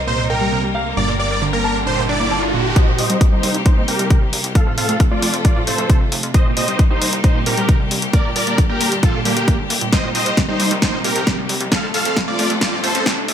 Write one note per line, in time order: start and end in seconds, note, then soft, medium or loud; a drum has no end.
0.00 0.95 C2 medium
0.00 0.93 C3 medium
0.00 2.73 G3 medium
0.00 2.73 A#3 medium
0.00 0.95 D#4 medium
0.00 2.73 A#4 medium
0.00 0.28 D#5 medium
0.00 riser medium
0.07 0.13 A#2 medium
0.07 0.24 C5 medium
0.19 0.24 A#2 loud
0.30 0.33 A#2 medium
0.30 0.62 A#4 medium
0.30 0.72 G5 medium
0.41 0.47 G3 medium
0.52 0.60 C3 loud
0.63 0.69 G3 medium
0.75 0.83 G3 medium
0.75 1.17 F5 medium
0.97 2.74 G1 medium
0.97 1.02 A#2 medium
0.97 2.74 D3 medium
0.97 2.74 G4 medium
0.97 1.13 D5 medium
1.08 1.14 A#2 loud
1.19 1.23 A#2 medium
1.19 1.44 D5 medium
1.31 1.36 A#3 medium
1.42 1.50 D3 loud
1.53 1.58 A#3 medium
1.53 1.77 A#4 medium
1.64 1.72 A#3 medium
1.64 2.22 A5 medium
1.87 1.92 A#2 medium
1.87 2.03 C5 medium
1.98 2.03 A#2 loud
2.09 2.14 D4 loud
2.09 2.41 D5 medium
2.20 2.23 A#3 medium
2.31 2.37 D3 loud
2.31 2.74 A5 medium
2.43 2.48 D4 medium
2.54 2.62 A#2 loud
2.76 2.82 A#2 medium
2.76 8.10 C3 medium
2.76 4.54 G3 medium
2.76 4.54 A#3 medium
2.76 4.54 D#4 medium
2.76 4.54 G4 medium
2.76 2.92 C5 medium
2.76 2.92 D#5 loud
2.76 kick loud
2.76 closed hi-hat medium
2.87 2.96 C2 medium
2.87 2.93 A#2 loud
2.98 3.07 C2 loud
2.98 3.02 A#2 medium
2.98 3.23 C5 medium
2.98 3.23 D#5 medium
2.98 open hi-hat loud
3.10 3.18 C2 medium
3.10 3.15 G3 medium
3.10 closed hi-hat medium
3.21 3.29 C3 loud
3.21 kick loud
3.21 closed hi-hat medium
3.32 3.41 C2 medium
3.32 3.38 G3 medium
3.32 3.56 D#4 medium
3.32 3.56 C5 medium
3.43 3.52 C2 medium
3.43 3.51 G3 medium
3.43 open hi-hat medium
3.54 3.63 C2 medium
3.54 closed hi-hat medium
3.66 3.71 A#2 medium
3.66 3.82 D#4 medium
3.66 3.82 C5 medium
3.66 kick loud
3.66 closed hi-hat medium
3.77 3.86 C2 medium
3.77 3.82 A#2 loud
3.88 3.97 C2 medium
3.88 3.91 A#2 medium
3.88 4.20 G4 medium
3.88 4.20 A#4 medium
3.88 open hi-hat loud
3.99 4.08 C2 medium
3.99 4.05 G3 medium
3.99 closed hi-hat medium
4.10 4.19 C3 loud
4.10 kick loud
4.10 closed hi-hat medium
4.22 4.30 C2 medium
4.22 4.27 G3 medium
4.33 4.42 A#1 loud
4.33 4.41 G3 medium
4.33 open hi-hat medium
4.44 4.53 C2 medium
4.44 closed hi-hat medium
4.55 4.61 A2 medium
4.55 6.33 F3 medium
4.55 6.33 A3 medium
4.55 6.33 F4 medium
4.55 4.71 A4 medium
4.55 6.33 A4 medium
4.55 4.71 F5 loud
4.55 kick loud
4.55 closed hi-hat medium
4.66 4.75 F2 medium
4.66 4.72 A2 loud
4.78 4.86 F2 loud
4.78 4.81 A2 medium
4.78 5.02 A4 medium
4.78 5.02 F5 medium
4.78 open hi-hat loud
4.89 4.98 F2 medium
4.89 4.94 A3 medium
4.89 closed hi-hat medium
5.00 5.08 C3 loud
5.00 kick loud
5.00 closed hi-hat medium
5.11 5.20 F2 medium
5.11 5.17 A3 medium
5.11 5.35 F4 medium
5.11 5.35 D5 medium
5.22 5.31 F2 medium
5.22 5.31 A3 medium
5.22 open hi-hat medium
5.34 5.42 F2 medium
5.34 closed hi-hat medium
5.45 5.50 A2 medium
5.45 5.61 F4 medium
5.45 5.61 D5 medium
5.45 kick loud
5.45 closed hi-hat medium
5.56 5.65 F2 medium
5.56 5.61 A2 loud
5.67 5.76 F2 medium
5.67 5.70 A2 medium
5.67 5.99 A4 medium
5.67 5.99 C5 medium
5.67 open hi-hat loud
5.78 5.87 F2 medium
5.78 5.84 A3 medium
5.78 closed hi-hat medium
5.90 5.98 C3 loud
5.90 kick loud
5.90 closed hi-hat medium
6.01 6.10 F2 medium
6.01 6.06 A3 medium
6.12 6.21 D#2 loud
6.12 6.20 A3 medium
6.12 open hi-hat medium
6.23 6.32 F2 medium
6.23 closed hi-hat medium
6.34 6.40 A#2 medium
6.34 11.68 G3 medium
6.34 8.12 A#3 medium
6.34 8.12 D#4 medium
6.34 11.68 G4 medium
6.34 6.50 C5 medium
6.34 6.50 D#5 loud
6.34 kick loud
6.34 closed hi-hat medium
6.46 6.54 C2 medium
6.46 6.51 A#2 loud
6.57 6.66 C2 loud
6.57 6.60 A#2 medium
6.57 6.81 C5 medium
6.57 6.81 D#5 medium
6.57 open hi-hat loud
6.68 6.77 C2 medium
6.68 6.73 G3 medium
6.68 closed hi-hat medium
6.79 6.87 C3 loud
6.79 kick loud
6.79 closed hi-hat medium
6.90 6.99 C2 medium
6.90 6.96 G3 medium
6.90 7.14 D#4 medium
6.90 7.14 C5 medium
7.02 7.10 C2 loud
7.02 7.10 G3 medium
7.02 open hi-hat medium
7.13 7.21 C2 medium
7.13 closed hi-hat medium
7.24 7.29 A#2 medium
7.24 7.40 D#4 medium
7.24 7.40 C5 medium
7.24 kick loud
7.24 closed hi-hat medium
7.35 7.44 C2 medium
7.35 7.41 A#2 loud
7.46 7.55 C2 loud
7.46 7.50 A#2 medium
7.46 7.78 G4 medium
7.46 7.78 A#4 loud
7.46 open hi-hat loud
7.57 7.66 C2 medium
7.57 7.63 G3 medium
7.57 closed hi-hat medium
7.69 7.77 C3 loud
7.69 kick loud
7.69 closed hi-hat medium
7.80 7.89 C2 medium
7.80 7.85 G3 medium
7.91 8.00 A#1 loud
7.91 7.99 G3 medium
7.91 open hi-hat medium
8.02 8.11 C2 medium
8.02 closed hi-hat medium
8.13 9.91 A#2 medium
8.13 8.19 A#2 medium
8.13 9.91 D3 medium
8.13 9.91 D4 medium
8.13 8.30 A#4 medium
8.13 8.29 D5 loud
8.13 kick loud
8.13 closed hi-hat medium
8.25 8.33 G1 medium
8.25 8.30 A#2 medium
8.36 8.45 G1 loud
8.36 8.39 A#2 medium
8.36 8.60 A#4 medium
8.36 8.60 D5 medium
8.36 open hi-hat loud
8.47 8.56 G1 medium
8.47 8.52 A#3 medium
8.47 closed hi-hat medium
8.58 8.66 D3 loud
8.58 kick loud
8.58 closed hi-hat medium
8.69 8.78 G1 medium
8.69 8.75 A#3 medium
8.69 8.93 G4 medium
8.69 8.93 A#4 medium
8.81 8.89 G1 medium
8.81 8.89 A#3 medium
8.81 open hi-hat loud
8.92 9.01 G1 medium
8.92 closed hi-hat medium
9.03 9.08 A#2 medium
9.03 9.19 F4 medium
9.03 9.19 A4 medium
9.03 kick loud
9.03 closed hi-hat medium
9.14 9.23 G1 medium
9.14 9.20 A#2 loud
9.25 9.34 G1 loud
9.25 9.29 G3 medium
9.25 9.57 A#3 medium
9.25 9.57 G4 medium
9.25 open hi-hat loud
9.37 9.45 G1 medium
9.37 9.45 A#3 medium
9.37 closed hi-hat medium
9.48 9.53 G3 medium
9.48 kick loud
9.48 closed hi-hat medium
9.59 9.68 G1 medium
9.59 9.62 D3 medium
9.70 9.79 A1 loud
9.70 9.73 A#3 loud
9.70 open hi-hat medium
9.81 9.90 G1 medium
9.81 9.89 A#2 medium
9.81 closed hi-hat medium
9.93 9.98 A#2 medium
9.93 13.34 C3 medium
9.93 11.70 A#3 medium
9.93 11.70 D#4 medium
9.93 10.09 C5 medium
9.93 10.09 D#5 loud
9.93 kick loud
9.93 snare soft
9.93 closed hi-hat medium
9.93 riser medium
10.04 10.12 C2 medium
10.04 10.09 A#2 loud
10.15 10.24 C2 loud
10.15 10.18 A#2 medium
10.15 10.39 C5 medium
10.15 10.39 D#5 loud
10.15 open hi-hat loud
10.26 10.35 C2 medium
10.26 closed hi-hat medium
10.37 10.45 C3 loud
10.37 kick loud
10.37 snare medium
10.37 closed hi-hat medium
10.48 10.57 C2 medium
10.48 10.54 G3 medium
10.48 10.73 D#4 medium
10.48 10.73 C5 medium
10.60 10.68 C2 loud
10.60 10.68 G3 medium
10.60 open hi-hat medium
10.71 10.80 C2 medium
10.71 10.76 G3 medium
10.71 closed hi-hat medium
10.82 10.88 A#2 medium
10.82 10.98 D#4 medium
10.82 10.98 C5 medium
10.82 kick loud
10.82 snare medium
10.82 closed hi-hat medium
10.93 11.02 C2 medium
10.93 10.99 A#2 loud
11.04 11.13 C2 medium
11.04 11.08 A#2 medium
11.04 11.37 G4 medium
11.04 11.37 A#4 loud
11.04 open hi-hat loud
11.16 11.24 C2 medium
11.16 closed hi-hat medium
11.27 11.35 C3 loud
11.27 kick loud
11.27 snare medium
11.27 closed hi-hat medium
11.38 11.47 C2 medium
11.38 11.44 G3 medium
11.49 11.58 A#1 loud
11.49 11.57 G3 medium
11.49 open hi-hat medium
11.61 11.69 C2 medium
11.61 11.66 G3 medium
11.61 closed hi-hat medium
11.72 11.77 A2 medium
11.72 13.34 F3 medium
11.72 13.34 A3 medium
11.72 13.34 F4 medium
11.72 13.34 A4 medium
11.72 11.88 A4 medium
11.72 11.88 F5 loud
11.72 kick loud
11.72 snare medium
11.72 closed hi-hat medium
11.83 11.92 F2 medium
11.83 11.88 A2 loud
11.94 12.03 F2 loud
11.94 11.97 A2 medium
11.94 12.18 A4 medium
11.94 12.18 F5 medium
11.94 open hi-hat loud
12.05 12.14 F2 medium
12.05 closed hi-hat medium
12.16 12.25 C3 loud
12.16 kick loud
12.16 snare medium
12.16 closed hi-hat medium
12.28 12.36 F2 medium
12.28 12.33 A3 medium
12.28 12.52 F4 medium
12.28 12.52 D5 loud
12.39 12.48 F2 loud
12.39 12.47 A3 medium
12.39 open hi-hat medium
12.50 12.59 F2 medium
12.50 12.55 A3 medium
12.50 closed hi-hat medium
12.61 12.77 F4 medium
12.61 12.77 D5 medium
12.61 kick loud
12.61 snare medium
12.61 closed hi-hat medium
12.72 12.81 F2 medium
12.72 12.78 A2 loud
12.84 12.92 F2 loud
12.84 12.87 A2 medium
12.84 13.16 A4 medium
12.84 13.16 C5 medium
12.84 open hi-hat loud
12.95 13.04 F2 medium
12.95 closed hi-hat medium
13.06 13.14 C3 loud
13.06 kick loud
13.06 snare medium
13.06 closed hi-hat medium
13.17 13.26 F2 medium
13.17 13.23 A3 medium
13.28 13.34 D#2 loud
13.28 13.34 A3 medium
13.28 open hi-hat medium